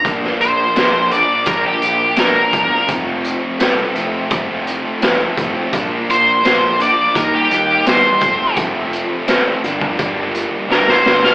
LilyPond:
<<
  \new Staff \with { instrumentName = "Lead electric guitar" } { \time 4/4 \key bes \major \tempo 4 = 84 r8 c''4 d''8 bes'16 g'8. bes'4 | r1 | r8 c''4 d''8 bes'16 g'8. c''4 | r2. bes'16 c''8 f''16 | }
  \new Staff \with { instrumentName = "Overdriven electric guitar" } { \clef bass \time 4/4 \key bes \major <bes, f bes d'>4 <bes, f bes d'>8 <bes, f bes d'>8 <bes, f bes d'>4 <bes, f bes d'>8 <bes, f bes d'>8 | <f, c f a c'>4 <f, c f a c'>8 <f, c f a c'>8 <f, c f a c'>4 <f, c f a c'>8 <f, c f a c'>8 | <bes, f bes d'>4 <bes, f bes d'>8 <bes, f bes d'>8 <ees g bes ees'>4 <ees g bes ees'>8 <f, c f a c'>8 | <f, c f a c'>4 <f, c f a c'>8 <g, d g bes d'>8 <g, d g bes d'>4 <g, d g bes d'>8 <g, d g bes d'>8 | }
  \new Staff \with { instrumentName = "Picked electric bass" } { \clef bass \time 4/4 \key bes \major bes,,8 bes,,8 bes,,4 bes,,8 bes,,8 bes,,8 e,,8 | f,,4 c,8 f,,8 f,,4 f,,8 f,,8 | bes,,8 bes,,8 bes,,4 ees,8 ees,8 e,8 f,,8 | f,,4 a,,8 g,,8 g,,4 g,,8 g,,8 | }
  \new DrumStaff \with { instrumentName = "Drums" } \drummode { \time 4/4 <hh bd>16 sn16 hh8 <hh sn>8 hh8 <hh bd>8 hh8 <hh sn>8 <hh bd>8 | <hh bd>8 hh8 <hh sn>8 hh8 <hh bd>8 hh8 <hh sn>8 <hh bd>8 | <hh bd>8 hh8 <hh sn>8 hh8 <hh bd>8 hh8 <hh sn>8 <hh bd>8 | <hh bd>8 hh8 <hh sn>8 hh16 bd16 <hh bd>8 hh8 sn16 sn16 sn16 sn16 | }
>>